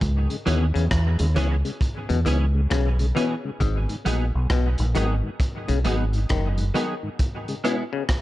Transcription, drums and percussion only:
0.01 kick, closed hi-hat
0.30 closed hi-hat
0.47 closed hi-hat
0.75 closed hi-hat
0.91 kick, cross-stick, closed hi-hat
1.19 closed hi-hat
1.36 closed hi-hat
1.65 closed hi-hat
1.81 kick, closed hi-hat
2.09 closed hi-hat
2.26 closed hi-hat
2.71 kick, cross-stick, closed hi-hat
2.99 closed hi-hat
3.17 closed hi-hat
3.61 kick, closed hi-hat
3.89 closed hi-hat
4.06 closed hi-hat
4.50 kick, cross-stick, closed hi-hat
4.78 closed hi-hat
4.95 closed hi-hat
5.40 kick, closed hi-hat
5.68 closed hi-hat
5.85 closed hi-hat
6.13 closed hi-hat
6.29 kick, cross-stick, closed hi-hat
6.58 closed hi-hat
6.75 closed hi-hat
7.19 kick, closed hi-hat
7.48 closed hi-hat
7.65 closed hi-hat
8.09 kick, cross-stick, closed hi-hat

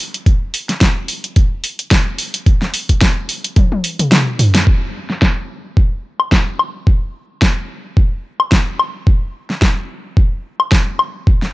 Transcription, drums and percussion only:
0.14 closed hi-hat
0.26 kick, closed hi-hat
0.54 open hi-hat
0.69 snare, closed hi-hat
0.81 kick, snare, closed hi-hat
1.08 open hi-hat
1.24 closed hi-hat
1.36 kick, closed hi-hat
1.64 open hi-hat
1.79 closed hi-hat
1.91 kick, snare, closed hi-hat
2.18 open hi-hat
2.34 closed hi-hat
2.46 kick, closed hi-hat
2.62 snare
2.74 open hi-hat
2.89 kick, closed hi-hat
3.01 kick, snare, closed hi-hat
3.29 open hi-hat
3.44 closed hi-hat
3.56 kick, closed hi-hat, high tom
3.72 high tom
3.84 open hi-hat
3.99 closed hi-hat, mid tom
4.12 snare, closed hi-hat, mid tom
4.39 mid tom, open hi-hat
4.55 snare, closed hi-hat
4.67 kick
5.10 snare
5.22 kick, snare
5.77 kick
6.20 high woodblock
6.32 kick, snare
6.59 high woodblock
6.87 kick
7.42 kick, snare
7.97 kick
8.40 high woodblock
8.52 kick, snare
8.79 high woodblock
9.07 kick
9.50 snare
9.62 kick, snare
10.17 kick
10.60 high woodblock
10.72 kick, snare
10.99 high woodblock
11.27 kick
11.42 snare

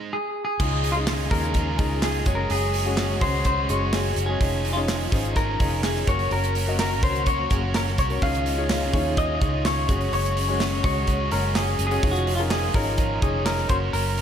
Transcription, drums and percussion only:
0.60 kick, crash
0.84 hi-hat pedal, open hi-hat
1.07 snare, clap, hi-hat pedal, open hi-hat
1.19 open hi-hat
1.31 kick, hi-hat pedal, open hi-hat
1.43 hi-hat pedal
1.54 kick, hi-hat pedal, open hi-hat
1.79 kick, hi-hat pedal, open hi-hat
2.02 snare, clap, hi-hat pedal, open hi-hat
2.26 kick, hi-hat pedal, open hi-hat
2.50 hi-hat pedal, open hi-hat
2.74 hi-hat pedal, open hi-hat
2.97 snare, clap, hi-hat pedal, open hi-hat
3.21 kick, hi-hat pedal, open hi-hat
3.44 kick, hi-hat pedal, open hi-hat
3.69 hi-hat pedal, open hi-hat
3.93 snare, clap, hi-hat pedal, open hi-hat
4.16 hi-hat pedal, open hi-hat
4.41 kick, hi-hat pedal, open hi-hat
4.65 hi-hat pedal, open hi-hat
4.88 snare, clap, hi-hat pedal, open hi-hat
5.01 open hi-hat
5.12 kick, hi-hat pedal, open hi-hat
5.24 hi-hat pedal
5.36 kick, hi-hat pedal, open hi-hat
5.60 kick, hi-hat pedal, open hi-hat
5.83 snare, clap, hi-hat pedal, open hi-hat
5.96 snare
6.07 kick, hi-hat pedal, open hi-hat
6.19 open hi-hat
6.31 hi-hat pedal, open hi-hat
6.43 hi-hat pedal
6.55 hi-hat pedal, open hi-hat
6.79 snare, clap, hi-hat pedal, open hi-hat
6.91 open hi-hat
7.03 kick, hi-hat pedal, open hi-hat
7.15 hi-hat pedal
7.26 kick, hi-hat pedal, open hi-hat
7.50 kick, hi-hat pedal, open hi-hat
7.74 snare, clap, hi-hat pedal, open hi-hat
7.87 snare
7.98 kick, hi-hat pedal, open hi-hat
8.10 open hi-hat
8.22 kick, hi-hat pedal, open hi-hat
8.34 hi-hat pedal
8.46 hi-hat pedal, open hi-hat
8.70 snare, clap, hi-hat pedal, open hi-hat
8.94 kick, hi-hat pedal, open hi-hat
9.17 kick, hi-hat pedal, open hi-hat
9.41 kick, hi-hat pedal, open hi-hat
9.65 snare, clap, hi-hat pedal, open hi-hat
9.89 kick, hi-hat pedal, open hi-hat
10.01 open hi-hat
10.13 hi-hat pedal, open hi-hat
10.25 hi-hat pedal
10.37 hi-hat pedal, open hi-hat
10.60 snare, clap, hi-hat pedal, open hi-hat
10.84 kick, hi-hat pedal, open hi-hat
11.07 kick, hi-hat pedal, open hi-hat
11.31 hi-hat pedal, open hi-hat
11.55 snare, clap, hi-hat pedal, open hi-hat
11.79 hi-hat pedal, open hi-hat
11.91 open hi-hat
12.03 kick, hi-hat pedal, open hi-hat
12.15 hi-hat pedal
12.27 hi-hat pedal, open hi-hat
12.50 snare, clap, hi-hat pedal, open hi-hat
12.74 kick, hi-hat pedal, open hi-hat
12.98 kick, hi-hat pedal, open hi-hat
13.22 kick, hi-hat pedal, open hi-hat
13.46 snare, clap, hi-hat pedal, open hi-hat
13.58 snare
13.69 kick, hi-hat pedal, open hi-hat
13.93 hi-hat pedal, open hi-hat
14.17 hi-hat pedal, open hi-hat

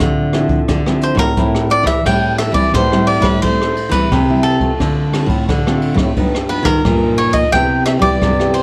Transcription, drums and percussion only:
0.00 kick, cross-stick, closed hi-hat
0.33 cross-stick, closed hi-hat
0.49 kick, closed hi-hat
0.68 kick, cross-stick, closed hi-hat
0.86 cross-stick
1.01 closed hi-hat
1.17 kick, cross-stick
1.37 kick, closed hi-hat
1.55 cross-stick
1.70 closed hi-hat
1.86 kick, cross-stick
2.06 kick, cross-stick, crash
2.39 cross-stick, ride
2.54 kick, ride
2.74 kick, cross-stick, ride
2.92 cross-stick
3.07 ride
3.23 kick, cross-stick, ride
3.43 kick, ride
3.61 cross-stick
3.76 ride
3.92 kick, cross-stick, ride
4.12 kick, cross-stick, ride
4.45 ride
4.60 kick, ride
4.80 kick, cross-stick, ride
5.13 cross-stick, ride
5.29 kick, ride
5.49 kick, cross-stick, ride
5.67 cross-stick
5.82 ride
5.97 kick, cross-stick, ride
6.17 kick, ride
6.35 cross-stick
6.50 ride
6.65 kick, cross-stick, ride
6.85 kick, cross-stick, ride
7.18 ride
7.34 kick, ride
7.53 kick, cross-stick, ride
7.86 cross-stick, ride
8.02 kick, ride
8.22 kick, cross-stick, ride
8.40 cross-stick
8.54 ride

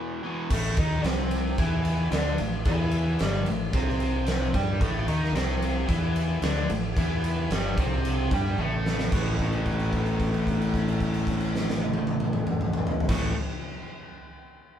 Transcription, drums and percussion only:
0.50 kick, crash
0.77 kick, ride
1.04 snare, ride
1.31 ride
1.58 kick, ride
1.85 ride
2.12 snare, ride
2.38 ride
2.65 kick, ride
2.91 ride
3.19 snare, ride
3.46 ride
3.73 kick, ride
3.89 snare
4.00 ride
4.26 snare, ride
4.54 kick, ride
4.81 kick, ride
5.08 ride
5.24 snare
5.35 snare, ride
5.62 ride
5.89 kick, ride
6.16 ride
6.42 snare, ride
6.70 ride
6.97 kick, ride
7.24 ride
7.50 snare, ride
7.78 kick, ride
8.05 ride
8.31 kick, ride
8.58 high tom
8.86 snare
8.99 snare
9.12 kick, crash
9.39 kick, crash
9.52 crash
9.66 kick, crash
9.79 crash
9.93 kick, crash
10.06 crash
10.20 kick, crash
10.34 crash
10.47 kick, crash
10.62 crash
10.74 kick, crash
10.88 crash
11.00 kick, crash
11.14 crash
11.27 kick, crash
11.40 crash
11.56 snare
11.69 snare
11.80 high tom
11.94 high tom
12.07 high tom
12.20 mid tom
12.33 mid tom
12.47 mid tom
12.61 mid tom
12.73 mid tom
12.87 floor tom
13.00 floor tom
13.09 kick, snare, crash

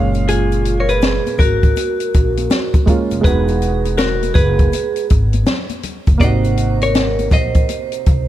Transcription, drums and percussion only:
0.14 closed hi-hat, shaker
0.28 closed hi-hat, shaker
0.51 closed hi-hat, shaker
0.65 closed hi-hat, shaker
0.89 closed hi-hat, high conga, shaker
1.01 snare, closed hi-hat, shaker
1.27 closed hi-hat, high conga, shaker
1.38 kick, closed hi-hat, low conga, shaker
1.63 kick, closed hi-hat, shaker
1.76 closed hi-hat, high conga, shaker
2.00 closed hi-hat, shaker
2.14 kick, closed hi-hat, shaker
2.37 closed hi-hat, high conga, shaker
2.50 snare, closed hi-hat, low conga, shaker
2.74 kick, closed hi-hat, high conga, shaker
2.87 kick, closed hi-hat, low conga, shaker
3.11 closed hi-hat, shaker
3.24 kick, closed hi-hat, shaker
3.48 closed hi-hat, shaker
3.62 closed hi-hat, shaker
3.85 closed hi-hat, high conga, shaker
3.98 snare, closed hi-hat, shaker
4.23 closed hi-hat, high conga, shaker
4.34 kick, closed hi-hat, low conga, shaker
4.59 kick, closed hi-hat, shaker
4.73 closed hi-hat, high conga, shaker
4.96 closed hi-hat, shaker
5.10 kick, closed hi-hat, shaker
5.33 closed hi-hat, high conga, shaker
5.46 snare, closed hi-hat, low conga, shaker
5.69 closed hi-hat, high conga, shaker
5.83 closed hi-hat, low conga, shaker
6.07 kick, closed hi-hat, shaker
6.20 kick, closed hi-hat, shaker
6.44 closed hi-hat, shaker
6.57 closed hi-hat, shaker
6.82 closed hi-hat, high conga, shaker
6.95 snare, closed hi-hat, shaker
7.19 closed hi-hat, high conga, shaker
7.31 kick, closed hi-hat, low conga, shaker
7.54 kick, closed hi-hat, shaker
7.69 closed hi-hat, high conga, shaker
7.92 closed hi-hat, shaker
8.06 kick, closed hi-hat, shaker

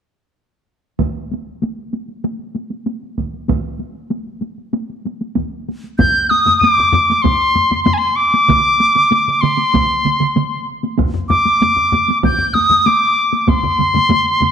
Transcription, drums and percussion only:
0.99 taiko, taiko high
1.16 taiko high
1.31 taiko high
1.47 taiko high
1.62 taiko high
1.78 taiko high
1.93 taiko high
2.08 taiko high
2.24 taiko high
2.39 taiko high
2.55 taiko high
2.71 taiko high
2.86 taiko high
3.03 taiko high
3.18 taiko, taiko high
3.34 taiko high
3.48 taiko, taiko high
3.64 taiko high
3.79 taiko high
3.94 taiko high
4.10 taiko high
4.27 taiko high
4.41 taiko high
4.58 taiko high
4.73 taiko high
4.90 taiko high
5.05 taiko high
5.21 taiko high
5.36 taiko, taiko high
5.52 taiko high
5.68 taiko high
5.84 taiko high
5.99 taiko, taiko low-mid, taiko high
6.31 taiko high
6.46 taiko low-mid, taiko high
6.61 taiko low-mid, taiko high
6.78 taiko low-mid
6.93 taiko low-mid, taiko high
7.10 taiko high
7.24 taiko, taiko low-mid, taiko high
7.55 taiko low-mid, taiko high
7.71 taiko low-mid, taiko high
7.86 taiko low-mid, taiko high
8.34 taiko high
8.49 taiko, taiko mid, taiko high
8.80 taiko high
8.95 taiko mid, taiko high
9.11 taiko mid, taiko high
9.28 taiko mid
9.43 taiko mid, taiko high
9.58 taiko high
9.74 taiko, taiko mid, taiko high
10.05 taiko mid, taiko high
10.20 taiko mid, taiko high
10.36 taiko mid, taiko high
10.83 taiko high
10.98 taiko, taiko low-mid, taiko high
11.14 taiko low-mid
11.30 taiko low-mid, taiko high
11.45 taiko high
11.61 taiko low-mid, taiko high
11.76 taiko low-mid
11.92 taiko low-mid, taiko high
12.08 taiko high
12.23 taiko, taiko low-mid, taiko high
12.38 taiko low-mid
12.53 taiko low-mid, taiko high
12.69 taiko low-mid, taiko high
12.86 taiko high
13.33 taiko high
13.47 taiko, taiko low-mid, taiko mid, taiko high
13.63 taiko low-mid, taiko mid
13.78 taiko low-mid, taiko mid, taiko high
13.93 taiko low-mid, taiko mid, taiko high
14.09 taiko low-mid, taiko mid, taiko high
14.41 taiko low-mid, taiko mid, taiko high

